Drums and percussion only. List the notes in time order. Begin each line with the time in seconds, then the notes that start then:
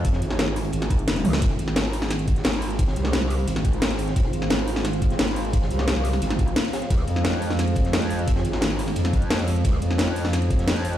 0.05 kick, closed hi-hat
0.13 snare
0.22 closed hi-hat
0.30 snare
0.39 snare, closed hi-hat
0.48 snare
0.56 closed hi-hat, open hi-hat
0.64 closed hi-hat
0.73 closed hi-hat
0.82 snare, closed hi-hat
0.90 kick, closed hi-hat
0.99 closed hi-hat
1.08 snare, closed hi-hat
1.16 closed hi-hat, high tom
1.25 open hi-hat, mid tom
1.33 snare, closed hi-hat
1.42 kick, closed hi-hat, ride
1.59 closed hi-hat
1.68 snare
1.76 snare, closed hi-hat, ride
1.85 snare
1.93 closed hi-hat, open hi-hat
2.02 snare, closed hi-hat
2.10 snare, closed hi-hat, ride
2.19 closed hi-hat
2.28 kick, closed hi-hat
2.36 snare, closed hi-hat
2.44 snare, closed hi-hat, ride
2.53 snare, closed hi-hat
2.62 open hi-hat
2.71 closed hi-hat
2.79 kick, closed hi-hat, ride
2.88 snare
2.96 closed hi-hat
3.04 snare
3.13 snare, closed hi-hat, ride
3.22 snare
3.30 closed hi-hat, open hi-hat
3.39 closed hi-hat
3.47 closed hi-hat, ride
3.56 snare, closed hi-hat
3.65 kick, closed hi-hat
3.73 closed hi-hat
3.82 snare, closed hi-hat, ride
3.90 snare, closed hi-hat
3.98 closed hi-hat, open hi-hat
4.08 snare, closed hi-hat
4.16 kick, closed hi-hat, ride
4.33 closed hi-hat
4.42 snare
4.50 snare, closed hi-hat, ride
4.59 snare
4.67 closed hi-hat, open hi-hat
4.76 snare, closed hi-hat
4.84 snare, closed hi-hat, ride
4.93 closed hi-hat
5.02 kick, closed hi-hat
5.10 snare, closed hi-hat
5.19 snare, closed hi-hat, ride
5.28 snare, closed hi-hat
5.36 open hi-hat
5.45 closed hi-hat
5.53 kick, closed hi-hat, ride
5.62 snare
5.71 closed hi-hat
5.79 snare
5.88 snare, closed hi-hat, ride
5.96 snare
6.04 closed hi-hat, open hi-hat
6.13 snare, closed hi-hat
6.22 closed hi-hat, ride
6.30 snare, closed hi-hat
6.39 kick, closed hi-hat
6.48 closed hi-hat
6.56 snare, closed hi-hat, ride
6.65 snare, closed hi-hat
6.73 snare, closed hi-hat, open hi-hat
6.82 snare, closed hi-hat
6.90 kick, closed hi-hat, ride
7.07 closed hi-hat
7.16 snare
7.24 snare, closed hi-hat, ride
7.33 snare
7.42 closed hi-hat, open hi-hat
7.50 snare, closed hi-hat
7.59 snare, closed hi-hat, ride
7.68 closed hi-hat
7.75 kick, closed hi-hat
7.85 snare, closed hi-hat
7.93 snare, closed hi-hat, ride
8.02 snare, closed hi-hat
8.10 open hi-hat
8.19 closed hi-hat
8.28 kick, closed hi-hat, ride
8.36 snare
8.45 closed hi-hat
8.53 snare
8.61 snare, closed hi-hat, ride
8.71 snare
8.79 closed hi-hat, open hi-hat
8.88 snare, closed hi-hat
8.96 closed hi-hat, ride
9.05 snare, closed hi-hat
9.13 kick, closed hi-hat
9.22 closed hi-hat
9.30 snare, closed hi-hat, ride
9.39 snare, closed hi-hat
9.48 closed hi-hat, open hi-hat
9.56 closed hi-hat
9.64 kick, closed hi-hat, ride
9.82 closed hi-hat
9.90 snare
9.98 snare, closed hi-hat, ride
10.08 snare
10.16 closed hi-hat, open hi-hat
10.25 snare, closed hi-hat
10.33 snare, closed hi-hat, ride
10.42 closed hi-hat
10.50 kick, closed hi-hat
10.59 snare, closed hi-hat
10.68 snare, closed hi-hat, ride
10.76 snare, closed hi-hat
10.85 open hi-hat
10.93 closed hi-hat